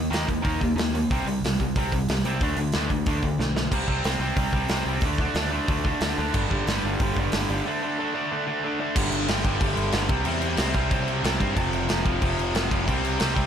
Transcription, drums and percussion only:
0.13 snare loud
0.13 open hi-hat medium
0.29 kick medium
0.29 open hi-hat medium
0.45 kick loud
0.45 open hi-hat medium
0.61 kick medium
0.61 open hi-hat soft
0.78 snare loud
0.78 open hi-hat medium
0.95 open hi-hat medium
1.11 kick loud
1.11 open hi-hat medium
1.27 open hi-hat medium
1.44 snare loud
1.44 open hi-hat medium
1.60 kick medium
1.60 open hi-hat medium
1.76 kick loud
1.76 open hi-hat medium
1.92 kick medium
1.92 open hi-hat medium
2.09 snare loud
2.09 open hi-hat medium
2.25 open hi-hat medium
2.41 kick loud
2.41 open hi-hat medium
2.57 open hi-hat medium
2.72 snare loud
2.72 open hi-hat medium
2.90 kick medium
2.90 open hi-hat soft
3.06 kick loud
3.06 open hi-hat medium
3.22 kick medium
3.22 open hi-hat soft
3.40 snare medium
3.56 snare medium
3.72 kick loud
3.72 crash loud
3.88 kick medium
4.04 snare loud
4.04 open hi-hat medium
4.37 kick loud
4.37 open hi-hat medium
4.53 kick medium
4.68 snare loud
4.68 open hi-hat medium
5.01 kick loud
5.01 open hi-hat medium
5.18 kick medium
5.35 snare loud
5.35 open hi-hat medium
5.68 kick loud
5.68 open hi-hat medium
5.85 kick medium
6.01 snare loud
6.01 open hi-hat medium
6.34 kick loud
6.34 crash medium
6.51 kick medium
6.67 snare loud
6.67 open hi-hat medium
7.00 kick loud
7.00 open hi-hat medium
7.17 kick medium
7.32 snare loud
7.32 open hi-hat medium
8.96 kick loud
8.96 crash loud
8.96 crash medium
9.12 crash medium
9.28 snare loud
9.28 crash medium
9.44 kick medium
9.44 crash medium
9.61 kick loud
9.61 crash medium
9.77 crash medium
9.92 snare loud
9.92 crash medium
10.09 kick loud
10.09 crash medium
10.25 crash medium
10.42 crash medium
10.57 snare loud
10.57 crash medium
10.73 kick medium
10.73 crash medium
10.91 kick loud
10.91 crash medium
11.08 crash medium
11.24 snare loud
11.24 crash medium
11.40 kick medium
11.40 crash medium
11.57 kick loud
11.57 crash medium
11.73 crash medium
11.89 snare loud
11.89 crash medium
12.05 kick medium
12.05 crash medium
12.22 kick loud
12.22 crash medium
12.39 crash medium
12.55 snare loud
12.55 crash medium
12.71 kick medium
12.71 crash medium
12.88 kick loud
12.88 crash medium
13.05 crash medium
13.20 snare loud
13.20 crash medium
13.37 kick medium
13.37 crash medium

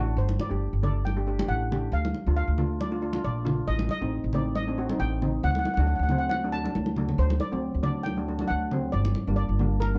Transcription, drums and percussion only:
0.29 high conga medium
0.40 high conga medium
0.83 low conga medium
1.07 high conga medium
1.39 high conga medium
1.72 low conga medium
2.05 high conga medium
2.14 high conga medium
2.58 low conga medium
2.81 high conga medium
3.13 high conga medium
3.46 low conga medium
3.79 high conga medium
3.89 high conga medium
4.33 low conga medium
4.55 high conga medium
4.89 high conga medium
5.22 low conga medium
5.44 low conga medium
5.55 high conga medium
5.65 high conga medium
5.77 high conga medium
6.09 low conga medium
6.31 high conga medium
6.65 high conga medium
6.75 high conga medium
6.86 high conga medium
6.96 low conga medium
7.09 low conga medium
7.30 high conga medium
7.40 high conga medium
7.84 low conga medium
8.06 high conga medium
8.39 high conga medium
8.71 low conga medium
9.05 high conga medium
9.15 high conga medium
9.59 low conga medium
9.82 high conga medium

